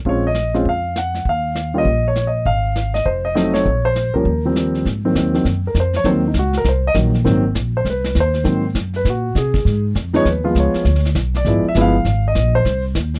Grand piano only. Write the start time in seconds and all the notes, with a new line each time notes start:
0.06 G#3 C4 C#4 F4 C#5
0.27 D#5
0.54 G#3 C4 C#4 F4
0.69 F5
0.98 F#5
1.29 F5
1.74 G3 A#3 C#4 F4 D#5
2.08 C#5
2.27 D#5
2.46 F5
2.94 D#5
3.06 C5
3.25 D#5
3.35 F#3 A3 C4 D#4 D#5
3.54 C#5
3.85 C5
4.14 F3 G3 A#3 C#4 A#4
4.45 F3 G3 A#3 C4
5.05 D#3 F#3 A#3 C4
5.34 D#3 F#3 A#3 C4
5.67 A#4
5.80 C5
5.96 C#5
6.05 D#3 F#3 A#3 C4 C5
6.28 D#4
6.39 F#4
6.57 A#4
6.69 C5
6.87 D#5
6.94 D#3 F#3 A#3 D#4
7.24 D#3 F#3 A#3 C4
7.77 C5
7.90 B4
8.20 C5
8.44 D#3 F#3 A#3 C4
8.96 B4
9.10 F#4
9.38 G#4
10.13 F3 G#3 B3 D#4 C#5
10.28 B4
10.44 F3 G#3 B3 F4
10.59 C#5
11.37 D5
11.46 F3 G#3 B3 E4
11.69 E5
11.77 F3 G#3 B3 E4
11.81 F5
12.28 D#5
12.55 C5